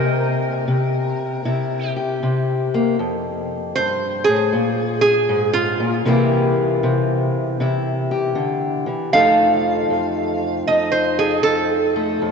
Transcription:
0.00 0.66 C3 medium
0.00 1.93 A#4 medium
0.68 1.44 C3 medium
1.45 2.21 C3 medium
1.45 2.95 E4 medium
1.96 2.96 G4 medium
2.23 2.96 C3 medium
2.74 2.96 A#3 medium
2.99 3.76 F2 medium
3.76 4.27 G2 medium
3.76 4.25 C5 medium
4.24 4.53 A2 medium
4.24 5.00 G#4 medium
4.53 5.79 A#2 medium
5.01 5.52 G#4 medium
5.29 5.80 G#2 medium
5.53 5.95 F4 medium
5.80 6.05 A#2 medium
6.05 6.82 C3 medium
6.05 8.85 E3 medium
6.05 9.10 A#3 medium
6.05 7.60 E4 medium
6.05 8.10 G4 medium
6.83 7.59 C3 medium
7.60 8.35 C3 medium
7.60 9.11 E4 medium
8.11 9.10 G4 medium
8.35 8.87 D3 medium
8.86 9.12 E3 medium
9.13 9.90 F2 medium
9.13 12.31 F3 medium
9.13 11.95 A3 medium
9.13 10.68 D#4 medium
9.13 11.18 A4 medium
9.13 10.62 F5 loud
9.90 10.67 F2 medium
10.67 11.45 F2 medium
10.67 12.25 D#4 medium
10.67 10.92 D#5 medium
10.92 11.17 C5 medium
11.19 11.43 G#4 medium
11.19 12.31 A4 medium
11.43 12.21 F2 medium
11.43 12.31 A4 medium
11.96 12.31 A3 medium
12.22 12.31 F2 medium

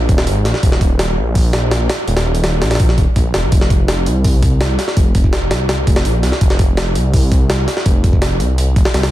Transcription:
0.09 0.28 D#1 loud
0.09 kick loud
0.09 open hi-hat medium
0.18 snare loud
0.27 0.47 G#1 medium
0.27 open hi-hat medium
0.45 0.53 A#1 medium
0.45 snare soft
0.45 open hi-hat medium
0.54 snare soft
0.63 1.19 D#1 loud
0.63 kick loud
0.63 open hi-hat medium
0.72 snare medium
0.81 kick medium
0.81 open hi-hat medium
0.99 snare loud
0.99 open hi-hat medium
1.17 1.88 A#1 medium
1.35 kick loud
1.35 open hi-hat medium
1.53 snare loud
1.53 open hi-hat medium
1.71 snare loud
1.71 open hi-hat medium
1.89 snare loud
1.89 open hi-hat medium
2.08 2.63 D#1 loud
2.08 open hi-hat medium
2.17 snare loud
2.17 open hi-hat medium
2.35 open hi-hat medium
2.44 snare loud
2.44 open hi-hat medium
2.62 2.97 A#1 medium
2.62 snare loud
2.62 open hi-hat medium
2.71 snare medium
2.71 open hi-hat medium
2.75 snare medium
2.75 open hi-hat medium
2.80 kick loud
2.80 open hi-hat medium
2.89 snare soft
2.98 3.06 D#1 loud
2.98 kick medium
2.98 open hi-hat medium
3.16 3.36 A#1 loud
3.16 kick medium
3.16 open hi-hat medium
3.34 3.45 D#1 loud
3.34 snare loud
3.34 open hi-hat medium
3.43 3.51 A#1 loud
3.52 4.08 F1 loud
3.52 kick loud
3.52 open hi-hat medium
3.61 snare medium
3.70 kick medium
3.70 open hi-hat medium
3.88 snare loud
3.88 open hi-hat medium
4.06 4.77 C2 medium
4.06 open hi-hat medium
4.24 kick loud
4.24 open hi-hat medium
4.43 kick loud
4.43 open hi-hat medium
4.61 snare loud
4.61 open hi-hat medium
4.79 snare soft
4.79 open hi-hat medium
4.88 snare soft
4.97 5.53 F1 loud
4.97 kick loud
4.97 open hi-hat medium
5.15 kick medium
5.15 open hi-hat medium
5.24 kick medium
5.33 snare loud
5.33 open hi-hat medium
5.51 5.86 C2 medium
5.51 snare loud
5.51 open hi-hat medium
5.69 snare loud
5.69 open hi-hat medium
5.87 6.07 F1 loud
5.87 kick loud
5.87 open hi-hat medium
5.96 snare loud
6.05 6.25 A#1 medium
6.05 open hi-hat medium
6.23 6.32 C2 medium
6.23 snare soft
6.23 open hi-hat medium
6.32 snare soft
6.41 6.97 F1 loud
6.41 kick loud
6.41 open hi-hat medium
6.50 snare medium
6.59 kick medium
6.59 open hi-hat medium
6.77 snare loud
6.77 open hi-hat medium
6.95 7.66 C2 medium
6.95 open hi-hat medium
7.13 kick loud
7.13 open hi-hat medium
7.32 kick medium
7.32 open hi-hat medium
7.50 snare loud
7.50 open hi-hat medium
7.68 snare soft
7.68 open hi-hat medium
7.77 snare soft
7.86 8.42 F1 loud
7.86 kick loud
7.86 open hi-hat medium
8.04 kick loud
8.04 open hi-hat medium
8.13 kick medium
8.22 snare loud
8.22 open hi-hat medium
8.40 8.75 C2 medium
8.40 open hi-hat medium
8.58 open hi-hat medium
8.76 8.84 F1 loud
8.76 kick loud
8.76 open hi-hat medium
8.85 snare loud
8.94 9.11 C2 medium
8.94 snare loud
8.94 open hi-hat medium
9.03 snare loud
9.03 open hi-hat medium

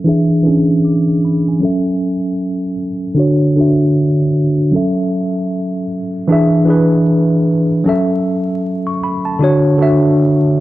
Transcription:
0.04 0.38 E3 medium
0.04 0.38 D4 medium
0.04 0.39 G#4 medium
0.09 0.40 E5 medium
0.43 1.29 E3 medium
0.43 1.30 D4 medium
0.43 1.31 G#4 medium
0.48 1.32 C#4 medium
0.85 1.21 D6 medium
1.25 1.46 B5 medium
1.48 1.84 G#5 medium
1.60 2.74 F#3 medium
1.60 2.74 C#4 medium
1.60 2.75 A4 medium
1.65 2.76 E5 medium
3.14 3.49 D3 medium
3.14 3.50 D4 medium
3.14 3.50 F#4 medium
3.19 3.51 C#5 medium
3.56 4.41 D3 medium
3.56 4.42 D4 medium
3.56 4.43 F#4 medium
3.61 4.44 E5 medium
4.71 5.85 F#3 medium
4.71 5.86 C#4 medium
4.71 5.87 A4 medium
4.76 5.88 E5 medium
6.28 6.61 E3 medium
6.28 6.62 D4 medium
6.28 6.63 G#4 medium
6.32 6.64 E5 medium
6.65 7.52 E3 medium
6.65 7.53 D4 medium
6.65 7.54 G#4 medium
6.70 7.54 B4 medium
7.84 8.98 F#3 medium
7.84 8.98 C#4 medium
7.84 8.99 A4 medium
7.89 9.00 E5 medium
8.87 9.01 C#6 medium
9.04 9.25 B5 medium
9.25 9.62 A5 medium
9.39 9.73 D3 medium
9.39 9.74 D4 medium
9.39 9.74 F#4 medium
9.44 9.75 C#5 loud
9.78 10.60 D3 medium
9.78 10.60 D4 medium
9.78 10.60 F#4 medium
9.82 10.60 E5 medium

